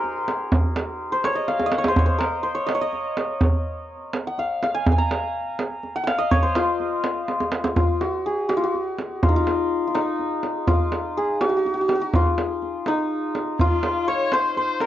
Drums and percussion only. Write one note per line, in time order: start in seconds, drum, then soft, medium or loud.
0.04 tombak ka soft
0.28 tombak tek medium
0.52 tombak dum loud
0.76 tombak tek medium
1.24 tombak tek medium
1.48 tombak tek soft
1.60 tombak ka medium
1.72 tombak tek medium
1.84 tombak ka medium
1.96 tombak dum loud
2.21 tombak tek medium
2.69 tombak tek medium
2.93 tombak ka soft
3.17 tombak tek medium
3.41 tombak dum loud
4.13 tombak tek medium
4.38 tombak ka soft
4.63 tombak tek medium
4.86 tombak dum loud
5.11 tombak tek medium
5.59 tombak tek medium
5.83 tombak ka soft
6.07 tombak tek medium
6.31 tombak dum medium
6.55 tombak tek medium
6.80 tombak ka soft
7.04 tombak tek medium
7.28 tombak tek soft
7.40 tombak ka medium
7.52 tombak tek medium
7.64 tombak ka medium
7.76 tombak dum medium
8.01 tombak tek medium
8.49 tombak tek medium
8.74 tombak ka soft
8.99 tombak tek medium
9.23 tombak dum loud
9.47 tombak tek medium
9.95 tombak tek medium
10.19 tombak ka soft
10.43 tombak tek soft
10.67 tombak dum loud
10.92 tombak tek medium
11.41 tombak tek medium
11.65 tombak ka soft
11.89 tombak tek medium
12.13 tombak dum loud
12.38 tombak tek medium
12.62 tombak ka soft
12.86 tombak tek medium
13.35 tombak tek medium
13.59 tombak dum medium
13.83 tombak tek medium
14.32 tombak tek medium
14.57 tombak ka soft
14.80 tombak tek medium